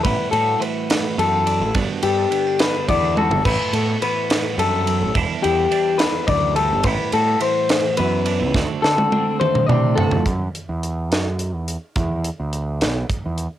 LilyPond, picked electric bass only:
\new Staff \with { instrumentName = "Picked electric bass" } { \clef bass \time 6/8 \key e \minor \tempo 4. = 71 a,,16 r16 a,8 r4 fis,8. a,,16 | g,,16 r16 g,8 r4 e,8. g,,16 | a,,16 r16 a,8 r4 fis,8. a,,16 | e,,16 r16 e,8 r4 d,8. g,,16 |
a,,16 r16 a,8 r4 fis,8. cis,16 | d,16 r16 d8 r4 c8. f,16 | fis,8 r16 e,8. fis,8. e,8 r16 | e,8. d,8. b,,8 r16 e,8 r16 | }